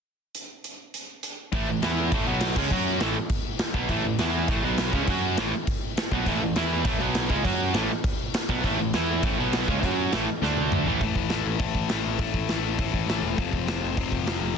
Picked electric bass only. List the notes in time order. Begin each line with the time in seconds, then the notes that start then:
1.52 A1
1.67 A1
1.83 E2
2.12 A1
2.27 B1
2.56 C#2
2.71 F#2
3.01 A1
3.74 B1
3.89 A1
4.04 A1
4.18 E2
4.48 A1
4.63 B1
4.93 C#2
5.08 F#2
5.38 A1
6.12 B1
6.26 A1
6.41 A1
6.55 E2
6.85 A1
6.99 B1
7.30 C#2
7.44 F#2
7.73 A1
8.49 B1
8.64 A1
8.80 A1
8.95 E2
9.23 A1
9.38 B1
9.68 C#2
9.83 F#2
10.12 A1
10.42 D2
10.85 A1
11.01 A1
11.15 A1
11.30 A1
11.45 A1
11.59 A1
11.74 A1
11.91 A1
12.06 A1
12.19 A1
12.34 A1
12.50 A1
12.79 A1
12.93 A1
13.07 A1
13.23 E1
13.37 F1
13.53 F1
13.66 F1
13.82 F1
13.98 F1
14.12 F1
14.27 F1
14.42 F1